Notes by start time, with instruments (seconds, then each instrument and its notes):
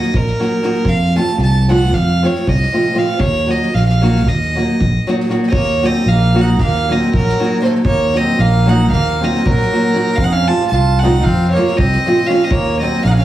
Already playing: violin D#5
0.02 snare
0.14 fingered electric bass A#1, violin A#4, kick
0.27 snare
0.39 nylon-string guitar F#3 A#3 D#4 F#4, snare
0.63 nylon-string guitar F#3 A#3 D#4 F#4, snare
0.73 snare
0.85 fingered electric bass F2, violin F5, kick
1.14 nylon-string guitar F3 A3 C4 F4, snare
1.19 violin A5
1.27 snare
1.38 fingered electric bass C2, snare
1.43 violin A5
1.68 nylon-string guitar F3 A3 C4 F4, snare
1.72 violin F#5
1.92 fingered electric bass F2, violin F5, kick, snare
2.07 snare
2.22 nylon-string guitar F3 A3 C4 F4, violin C#5, snare
2.35 snare
2.47 fingered electric bass C2, violin D#5, kick
2.62 snare
2.73 nylon-string guitar F3 A3 C4 F4, snare
2.94 nylon-string guitar F3 A3 C4 F4
2.98 violin F5, snare
3.09 snare
3.19 fingered electric bass D#2, violin C#5, kick
3.35 snare
3.46 nylon-string guitar F#3 A#3 D#4 F#4
3.50 violin D#5, snare
3.62 snare
3.74 fingered electric bass A#1, violin F5, snare
3.89 violin F5, snare
4.01 nylon-string guitar F#3 A#3 D#4 F#4, snare
4.16 snare
4.27 fingered electric bass D#2, violin D#5, kick, snare
4.42 snare
4.55 nylon-string guitar F#3 A#3 D#4 F#4, snare
4.80 fingered electric bass A#1, kick
5.07 nylon-string guitar F#3 A#3 D#4 F#4, snare
5.20 snare
5.28 nylon-string guitar F#3 A#3 D#4 F#4, snare
5.43 accordion C4, snare
5.48 violin C#5 D#5
5.52 fingered electric bass D#2, accordion A#3, kick
5.81 nylon-string guitar F#3 A#3 D#4 F#4, accordion C4, snare
5.86 violin D#5
5.94 snare
6.06 fingered electric bass A#1, violin F5, snare
6.10 accordion A#3
6.34 nylon-string guitar F#3 A#3 D#4 F#4, snare
6.41 accordion D#4, violin F#5
6.59 fingered electric bass D#2, accordion A#3, violin F5, kick, snare
6.75 snare
6.89 nylon-string guitar F#3 A#3 D#4 F#4, violin D#5, snare
6.94 accordion C4
7.02 snare
7.13 fingered electric bass A#1, accordion F#3, violin A#4, kick
7.28 snare
7.39 nylon-string guitar F#3 A#3 D#4 F#4, snare
7.60 nylon-string guitar F#3 A#3 D#4 F#4, violin C5, snare
7.65 accordion A3
7.74 snare
7.85 fingered electric bass D#2, accordion A#3, violin C#5, kick
8.14 nylon-string guitar F#3 A#3 D#4 F#4, accordion C4, violin D#5, snare
8.27 snare
8.39 fingered electric bass A#1, accordion A#3, violin F5, snare
8.66 nylon-string guitar F#3 A#3 D#4 F#4, accordion D#4, violin F#5, snare
8.91 fingered electric bass D#2, accordion A#3, violin F5, kick, snare
9.07 snare
9.20 nylon-string guitar F#3 A#3 D#4 F#4, accordion C4, violin D#5, snare
9.35 snare
9.46 fingered electric bass A#1, accordion F#3, violin A#4, kick
9.61 snare
9.71 nylon-string guitar F#3 A#3 D#4 F#4, snare
9.94 nylon-string guitar F#3 A#3 D#4 F#4, snare
10.07 snare
10.16 fingered electric bass F2, accordion C4, violin F5, kick
10.24 accordion D#4, violin F#5
10.30 accordion C#4, violin F5
10.47 nylon-string guitar F3 A3 C4 F4, accordion F4, violin A5, snare
10.59 snare
10.69 fingered electric bass C2, accordion F4, violin A5, snare
10.99 nylon-string guitar F3 A3, accordion D#4, violin F#5, snare
11.04 nylon-string guitar C4 F4
11.23 fingered electric bass F2, accordion C4, violin F5, kick, snare
11.41 snare
11.52 nylon-string guitar F3, accordion A#3, violin C#5, snare
11.57 nylon-string guitar A3 C4 F4
11.67 snare
11.77 fingered electric bass C2, accordion C4, violin D#5, kick
11.92 snare
12.05 nylon-string guitar F3 A3 C4 F4, snare
12.26 nylon-string guitar F3 A3 C4 F4, accordion C#4, violin F5, snare
12.40 violin D#5, snare
12.45 accordion C4
12.51 fingered electric bass D#2, accordion A#3, violin C#5, kick
12.79 nylon-string guitar F#3 A#3 D#4 F#4, accordion C4, violin D#5, snare
12.93 snare
13.03 fingered electric bass A#1, accordion A#3, violin F5, snare
13.08 accordion D#4, violin F5 F#5
13.14 accordion C#4
13.19 accordion C#4, violin F5, snare